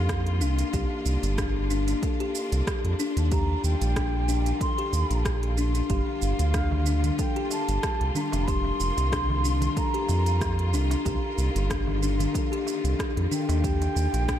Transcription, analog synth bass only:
0.00 0.43 F2 loud
0.41 0.64 C2 loud
0.73 0.85 C2 loud
1.06 1.17 C2 medium
1.23 1.95 G1 loud
2.52 2.62 C2 loud
2.84 2.94 F2 medium
3.17 3.56 D#2 medium
3.64 3.76 D#2 medium
3.81 4.53 A#1 loud
4.93 5.05 D#2 loud
5.10 5.82 A#1 loud
5.90 6.01 G1 loud
6.22 6.34 G1 medium
6.39 7.11 D2 loud
7.69 7.78 G1 loud
8.01 8.11 C2 medium
8.33 8.72 F1 medium
8.80 8.92 F1 medium
8.97 9.69 C2 loud
10.09 10.75 F2 loud
10.73 10.96 C2 loud
11.06 11.18 C2 loud
11.38 11.50 C2 medium
11.55 12.27 G1 loud
12.84 12.94 C2 loud
13.17 13.27 F2 medium
13.49 13.88 D#2 medium
13.96 14.08 D#2 medium
14.14 14.39 A#1 loud

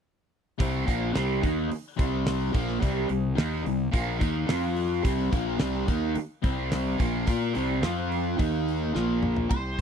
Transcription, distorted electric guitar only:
0.58 0.85 C3 medium
0.58 0.86 G3 medium
0.58 0.86 C4 medium
0.86 1.12 A#2 medium
0.86 1.13 F3 medium
0.86 1.13 A#3 medium
1.13 1.41 C3 medium
1.13 1.41 G3 medium
1.13 1.41 C4 medium
1.41 1.68 D#3 medium
1.41 1.69 A#3 medium
1.41 1.69 D#4 loud
1.69 muted distorted electric guitar stroke medium
1.97 2.52 C3 loud
1.97 2.53 G3 loud
1.97 2.53 C4 loud
2.52 2.79 A#2 medium
2.52 2.80 F3 medium
2.52 2.80 A#3 medium
2.79 3.07 C3 medium
2.79 3.07 G3 medium
2.79 3.08 C4 medium
3.08 3.31 C3 medium
3.08 3.31 G3 medium
3.35 3.63 D#3 medium
3.35 3.63 A#3 medium
3.35 3.64 D#4 medium
3.63 3.87 C3 medium
3.63 3.87 G3 medium
3.91 4.19 A#2 loud
3.91 4.20 F3 loud
3.91 4.19 A#3 loud
4.20 4.47 D#3 medium
4.20 4.48 A#3 loud
4.20 4.48 D#4 loud
4.48 5.03 F3 medium
4.48 5.03 C4 medium
4.48 5.04 F4 loud
5.04 5.31 C3 medium
5.04 5.32 G3 medium
5.04 5.32 C4 medium
5.32 5.57 A#2 medium
5.32 5.58 F3 medium
5.32 5.59 A#3 medium
5.58 5.86 C3 medium
5.58 5.87 G3 medium
5.58 5.87 C4 loud
5.87 6.15 D#3 medium
5.87 6.15 A#3 loud
5.87 6.15 D#4 medium
6.15 muted distorted electric guitar stroke medium
6.42 6.98 C3 loud
6.42 6.98 G3 medium
6.42 6.99 C4 loud
6.99 7.27 A#2 medium
6.99 7.26 F3 medium
6.99 7.26 A#3 loud
7.27 7.54 A#3 medium
7.27 7.55 F4 medium
7.27 7.55 A#4 medium
7.54 7.82 C3 medium
7.54 7.82 G3 medium
7.54 7.82 C4 medium
7.82 8.37 F3 medium
7.82 8.38 C4 medium
7.82 8.38 F4 medium
8.38 8.93 D#3 medium
8.38 8.94 A#3 loud
8.38 8.94 D#4 loud
8.94 9.49 A#2 medium
8.94 9.50 F3 loud
8.94 9.50 A#3 loud

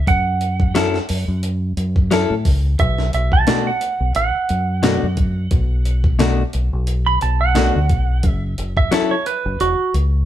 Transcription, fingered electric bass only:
0.07 0.98 F#2 medium
1.10 1.26 F#2 medium
1.28 1.72 F#2 medium
1.77 2.24 F#2 medium
2.30 2.44 A2 medium
2.45 2.76 C#2 medium
2.79 3.10 B1 loud
3.14 3.44 B1 medium
4.00 4.14 B1 medium
4.16 4.32 A1 medium
4.35 muted fingered electric bass stroke soft
4.50 4.97 F#2 loud
5.03 5.47 F#2 medium
5.51 6.42 B1 medium
6.54 6.71 B1 medium
6.73 7.17 B1 medium
7.22 7.69 B1 medium
7.75 7.89 D2 medium
7.90 8.20 B1 medium
8.24 8.54 F#1 loud
8.59 8.89 F#1 medium
9.45 9.59 F#1 medium
9.61 9.77 E1 medium
9.94 10.25 C#2 medium

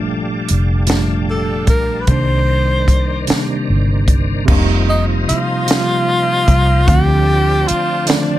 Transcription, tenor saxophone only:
1.30 1.66 A4 medium
1.69 2.03 A#4 loud
2.01 2.10 B4 medium
2.08 3.28 C5 loud
4.89 5.05 D#4 medium
5.29 6.90 F4 loud
6.88 7.69 G4 loud
7.68 8.10 F4 loud
8.08 8.39 D4 medium

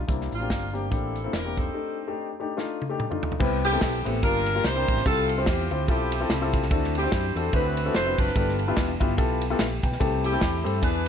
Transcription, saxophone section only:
0.33 1.12 A#3 medium
0.33 0.90 D4 medium
0.33 0.72 F4 medium
0.74 0.92 G4 medium
0.91 1.71 D4 medium
0.91 1.71 E4 medium
0.91 1.33 A4 medium
1.34 1.57 A#4 medium
1.58 2.37 C4 medium
1.58 2.37 D#4 medium
1.58 1.99 A4 medium
3.65 4.20 B3 medium
3.65 4.20 E4 medium
3.65 4.03 G4 loud
4.06 4.24 A4 loud
4.24 4.62 D4 medium
4.24 4.62 F4 medium
4.24 4.65 A#4 loud
4.65 5.03 E4 medium
4.65 5.04 G4 medium
4.65 5.06 C5 loud
5.06 5.47 E4 medium
5.06 5.85 F4 medium
5.06 5.44 A4 loud
5.48 5.89 E4 medium
5.48 5.89 G4 medium
5.90 6.68 E4 medium
5.90 6.50 G4 medium
6.96 7.74 C4 medium
6.96 7.53 E4 medium
6.96 7.34 G4 medium
7.37 7.54 A4 medium
7.55 8.32 E4 medium
7.55 8.33 F#4 medium
7.55 7.92 B4 loud
7.95 8.17 C5 loud
8.19 8.97 D4 medium
8.19 8.97 F4 medium
8.19 8.60 B4 loud
10.24 10.79 E4 medium
10.24 10.63 G4 medium
10.65 10.83 A4 medium
10.82 11.08 D4 medium
10.82 11.08 G#4 medium
10.82 11.08 B4 loud

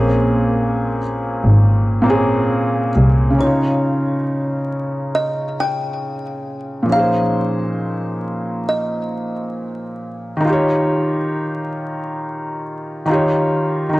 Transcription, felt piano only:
0.00 0.97 A#2 medium
0.00 0.98 A#3 medium
0.00 0.99 C4 medium
0.00 1.00 C#4 medium
0.00 1.01 G#4 medium
2.02 2.88 A#2 medium
2.02 2.89 A#3 medium
2.02 2.90 C4 medium
2.08 2.91 C#4 medium
2.08 2.92 G#4 medium
3.30 6.83 C#3 medium
3.30 6.85 C#4 medium
3.39 6.87 D#4 medium
3.39 6.89 F4 soft
3.46 6.91 C#5 medium
6.83 10.36 A#2 medium
6.83 10.38 F3 soft
6.89 10.39 C#4 medium
6.89 10.39 D#4 medium
6.95 10.42 G#4 medium
6.95 10.44 C5 medium
10.37 13.01 D#3 medium
10.37 13.03 D#4 medium
10.45 13.05 F4 medium
10.45 13.07 G4 medium
10.53 13.09 C#5 medium
13.06 13.88 D#3 medium
13.06 13.92 D#4 medium
13.06 13.97 F4 medium
13.11 13.96 G4 medium
13.11 13.99 C#5 medium
13.89 14.00 D#3 medium
13.94 14.00 D#4 medium

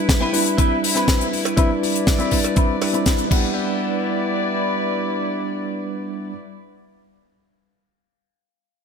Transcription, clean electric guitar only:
0.20 0.39 C4 medium
0.20 0.40 E4 medium
0.20 0.40 B4 medium
0.57 0.77 C4 medium
0.57 0.77 E4 medium
0.57 0.77 B4 medium
0.95 1.26 C4 medium
0.95 1.27 E4 medium
0.95 1.27 B4 medium
1.57 1.70 C4 loud
1.57 1.70 E4 medium
1.57 1.70 B4 loud
1.81 muted clean electric guitar stroke soft
2.18 2.38 C4 medium
2.18 2.38 E4 medium
2.18 2.39 B4 medium
2.56 2.75 C4 medium
2.56 2.75 E4 medium
2.56 2.76 B4 medium
2.93 3.24 C4 medium
2.93 3.25 E4 medium
2.93 3.25 B4 medium
3.27 6.29 D4 medium
3.27 6.33 E4 medium
3.35 6.37 G4 medium

